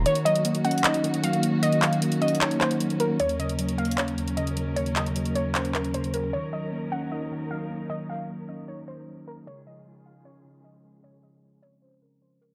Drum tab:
HH |x--x--x--x--x--x--x-x-x-x--x--x--x--x--x--x-----|x--x--x--x--x--x--x-x-x-x--x--x--x--x--x--x-----|x--x--x--x--x--x--x-x-x-x--x--x--x--x--x--x-----|x--x--x--x--x--x--x-----x--x--x--x--x--x--x-----|
CP |------------------------x-----------------------|------x-----------------x-----x-----------------|------------------------x-----------------------|------x-----------------x-----x-----------------|

HH |------------------------------------------------|------------------------------------------------|------------------------------------------------|------------------------------------------------|
CP |------------------------------------------------|------------------------------------------------|------------------------------------------------|------------------------------------------------|